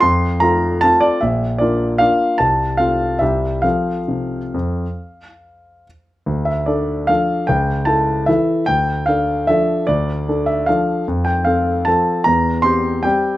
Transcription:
\new Staff \with { instrumentName = "Grand piano" } { \time 3/4 \key f \major \tempo 4 = 149 << { c'''4 bes''4 a''8 d''8 | e''4 d''4 f''4 | a''4 f''4 e''4 | f''2.~ |
f''2 r4 | \key d \minor r8 e''8 d''4 f''4 | g''4 a''4 e''4 | g''4 f''4 e''4 |
d''4. e''8 f''4 | r8 g''8 f''4 a''4 | bes''4 c'''4 g''4 | } \\ { f,4 <a c' f'>4 <a c' f'>4 | bes,,4 <bes d' f'>4 <bes d' f'>4 | c,4 <a c' f'>4 <c, g c' g'>4 | <f c' a'>4 c4 f,4 |
r2. | d,4 <d' a'>4 <f d' a'>4 | cis,4 <e' a'>4 <e e' a'>4 | d,4 <d' a'>4 <f d' a'>4 |
d,4 <d' a'>4 <f d' a'>4 | f,4 <c' a'>4 <f c' a'>4 | e,4 <c' g'>4 <g c' g'>4 | } >> }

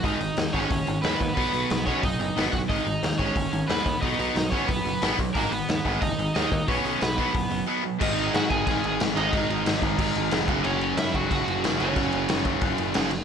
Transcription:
<<
  \new Staff \with { instrumentName = "Overdriven electric guitar" } { \time 4/4 \key gis \minor \tempo 4 = 181 <dis' dis''>4. <cis' cis''>4. <b b'>4 | <b b'>4. <cis' cis''>8 <dis' dis''>4. <fis' fis''>8 | <dis' dis''>4. <cis' cis''>4. <b b'>4 | <dis' dis''>4. <cis' cis''>8 <b b'>4. r8 |
<ais ais'>8 <b b'>4. <dis' dis''>4 <dis' dis''>4 | <cis' cis''>4 <b b'>2 r4 | <dis' dis''>4 <fis' fis''>8 <gis' gis''>8 <gis' gis''>4 r8 <dis' dis''>8~ | <dis' dis''>2.~ <dis' dis''>8 r8 |
<cis' cis''>4 <e' e''>8 <fis' fis''>8 <fis' fis''>4 r8 <cis' cis''>8~ | <cis' cis''>2.~ <cis' cis''>8 r8 | }
  \new Staff \with { instrumentName = "Distorted electric guitar" } { \clef bass \time 4/4 \key gis \minor <gis, dis gis>8 <gis, dis>8 <gis, dis>8 <gis, dis gis>8 <gis, dis>8 <gis, dis>8 <gis, dis gis>8 <gis, dis>8 | <b, fis b>8 <b, fis b>8 <b, fis>8 <b, fis b>8 <b, fis>8 <b, fis>8 <b, fis b>8 <b, fis>8 | <gis, dis gis>8 <gis, dis>8 <gis, dis>8 <gis, dis gis>8 <gis, dis>8 <gis, dis>8 <gis, dis gis>8 <gis, dis>8 | <b, fis b>8 <b, fis b>8 <b, fis>8 <b, fis b>8 <b, fis>8 <b, fis>8 <b, fis b>8 <b, fis>8 |
<gis, dis gis>8 <gis, dis>8 <gis, dis>8 <gis, dis gis>8 <gis, dis>8 <gis, dis>8 <gis, dis gis>8 <gis, dis>8 | <b, fis b>8 <b, fis b>8 <b, fis>8 <b, fis b>8 <b, fis>8 <b, fis>8 <b, fis b>8 <b, fis>8 | <gis, dis gis>2 <gis, dis gis>2 | <gis, dis gis>2 <gis, dis gis>4. <fis, cis fis>8~ |
<fis, cis fis>4. <fis, cis fis>2 <fis, cis fis>8~ | <fis, cis fis>4. <fis, cis fis>2 r8 | }
  \new Staff \with { instrumentName = "Distorted electric guitar" } { \clef bass \time 4/4 \key gis \minor <gis, dis gis>8 <gis, dis>8 <gis, dis>8 <gis, dis gis>8 <gis, dis>8 <gis, dis>8 <gis, dis gis>8 <gis, dis>8 | <b, fis b>8 <b, fis b>8 <b, fis>8 <b, fis b>8 <b, fis>8 <b, fis>8 <b, fis b>8 <b, fis>8 | <gis, dis gis>8 <gis, dis>8 <gis, dis>8 <gis, dis gis>8 <gis, dis>8 <gis, dis>8 <gis, dis gis>8 <gis, dis>8 | <b, fis b>8 <b, fis b>8 <b, fis>8 <b, fis b>8 <b, fis>8 <b, fis>8 <b, fis b>8 <b, fis>8 |
<gis, dis gis>8 <gis, dis>8 <gis, dis>8 <gis, dis gis>8 <gis, dis>8 <gis, dis>8 <gis, dis gis>8 <gis, dis>8 | <b, fis b>8 <b, fis b>8 <b, fis>8 <b, fis b>8 <b, fis>8 <b, fis>8 <b, fis b>8 <b, fis>8 | <gis, dis gis>2.~ <gis, dis gis>8 <gis, dis gis>8 | <gis, dis gis>2.~ <gis, dis gis>8 <fis, cis fis>8~ |
<fis, cis fis>2. <fis, cis fis>8 <fis, cis fis>8~ | <fis, cis fis>2. <fis, cis fis>8 r8 | }
  \new Staff \with { instrumentName = "Picked electric bass" } { \clef bass \time 4/4 \key gis \minor gis,,8 gis,,8 dis,8 gis,,8 fis,,8 gis,,8 dis,8 dis,8 | b,,8 b,,8 b,,4 fis,,8 fis,,8 gis,,8 g,,8 | gis,,8 gis,,8 dis,8 gis,,8 fis,,8 gis,,8 dis,8 dis,8 | b,,8 b,,8 b,,4 fis,,8 fis,,8 gis,,8 b,,8 |
gis,,8 gis,,8 dis,8 gis,,8 fis,,8 gis,,8 dis,8 dis,8 | b,,8 b,,8 b,,4 fis,,8 fis,,8 r4 | gis,,4 gis,8 gis,,8 gis,,8 gis,,8 gis,,8 gis,,8 | gis,,8 gis,,8 gis,,8 gis,,8 gis,,8 gis,,8 eis,,8 fis,,8 |
fis,,4 fis,8 fis,,8 fis,,8 fis,,8 fis,,8 fis,,8 | fis,,8 fis,,8 fis,,8 fis,,8 fis,,8 fis,,8 fis,,4 | }
  \new DrumStaff \with { instrumentName = "Drums" } \drummode { \time 4/4 <hho bd>8 hho8 <hho sn>8 <hho bd>8 <hho bd>8 hho8 <hho sn>8 <hho bd>8 | <hho bd>8 hho8 <hho sn>8 <hho bd>8 <hho bd>8 hho8 <hho sn>8 <hho bd>8 | <hho bd>8 hho8 <hho sn>8 <hho bd>8 <hho bd>8 hho8 <hho sn>8 <hho bd>8 | <hho bd>8 hho8 <hho sn>8 <hho bd>8 <hho bd>8 hho8 <hho sn>8 <hho bd>8 |
<hho bd>8 hho8 <hho sn>8 <hho bd>8 <hho bd>8 hho8 <hho sn>8 <hho bd>8 | <hho bd>8 hho8 <hho sn>8 <hho bd>8 <hho bd>8 hho8 r4 | <cymc bd>8 cymc8 <cymc sn>8 <cymc bd>8 <cymc bd>8 cymc8 <cymc sn>8 cymc8 | <cymc bd>8 cymc8 <cymc sn>8 <cymc bd>8 <cymc bd>8 cymc8 <cymc sn>8 <cymc bd>8 |
cymc8 cymc8 <cymc sn>8 <cymc bd>8 <cymc bd>8 cymc8 <cymc sn>8 cymc8 | <cymc bd>8 cymc8 <cymc sn>8 <cymc bd>8 <cymc bd>8 cymc8 <cymc sn>8 cymc8 | }
>>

